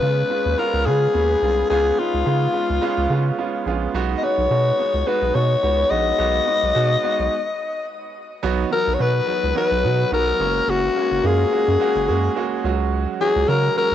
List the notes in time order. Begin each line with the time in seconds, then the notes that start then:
Already playing: B3 C#4 F4 B4
0.00 C#3 G#3 B3 C#4 F4
0.30 G#3 B3 C#4 F4
0.46 D#2
0.57 G#3 B3 C#4 F4 A#4
0.74 C#2
0.85 C#3 G#3 B3 C#4 F4 G#4
1.13 D#2 G#3 B3 C#4 G#4
1.42 C2 G#3 B3 C#4 F4
1.70 C#2 G#3 B3 C#4 F4 G#4
1.98 G#3 B3 C#4 D#4 F4
2.14 C#2
2.25 C#3 G#3 B3 C#4 F4
2.53 G#3 B3 C#4 F4
2.70 C#2
2.81 G#3 B3 C#4 F4
2.98 C#2
3.10 C#3 G#3 B3 C#4 F4
3.38 G#3 B3 C#4 F4
3.66 A#1 G#3 B3 C#4 F4
3.94 B1 G#3 B3 D#4 F#4
4.18 D#5
4.22 G#3 B3 D#4 F#4 C#5
4.38 B1
4.51 B2 G#3 B3 D#4 F#4
4.79 G#3 B3 D#4 F#4
4.94 C#2
5.07 G#3 B3 D#4 F#4 B4
5.22 B1
5.34 B2 G#3 B3 D#4 F#4 C#5
5.62 C#2 G#3 B3 D#4 F#4
5.90 A#1 G#3 B3 D#4 F#4 D#5
6.18 B1 G#3 B3 D#4 F#4
6.47 G#3 B3 D#4 F#4
6.63 B1
6.74 B2 G#3 B3 D#4 F#4
7.03 G#3 B3 D#4 F#4
7.19 B1
8.43 B1 F#3 B3 D#4 F#4
8.71 F#3 B3 D#4 F#4 A#4
8.88 B1
8.94 C#5
8.99 B2 F#3 B3 D#4 F#4 B4
9.27 F#3 B3 D#4 F#4
9.44 C#2
9.55 F#3 B3 D#4 F#4 B4
9.71 B1
9.84 B2 F#3 B3 D#4 F#4
10.11 B1 F#3 B3 D#4 F#4 A#4
10.40 F#1 G#3 A#3 C#4 F#4
10.68 F#1 F#4
10.96 G#3 A#3 C#4 F#4
11.11 F#1
11.23 F#2 G#3 A#3 C#4 F4 G#4
11.52 G#3 A#3 C#4 F#4
11.68 F#2
11.80 G#3 A#3 C#4 F#4
11.96 F#1
12.08 F#2 G#3 A#3 C#4 F#4
12.36 G#3 A#3 C#4 F#4
12.64 C#2 F#3 G#3 C#4 F#4
13.21 F#3 G#3 C#4 F#4 G#4
13.36 C#2
13.48 C#3 F#3 G#3 C#4 F#4 A#4
13.76 F#3 G#3 C#4 F#4 A#4